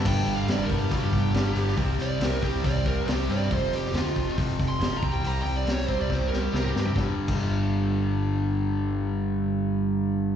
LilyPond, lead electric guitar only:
\new Staff \with { instrumentName = "Lead electric guitar" } { \time 4/4 \key g \mixolydian \tempo 4 = 139 \tuplet 3/2 { g''4 f''8 d''8 bes'8 g'8 } g'2 | r8 d''8 bes'8 g'8 d''8 bes'8 g'8 d''8 | c''8 g'8 f'4 \tuplet 3/2 { r4 c'''8~ c'''8 bes''8 g''8 } | \tuplet 3/2 { bes''8 g''8 d''8 cis''8 c''8 d''8 c''8 bes'8 g'8 bes'8 g'4 } |
r1 | r1 | }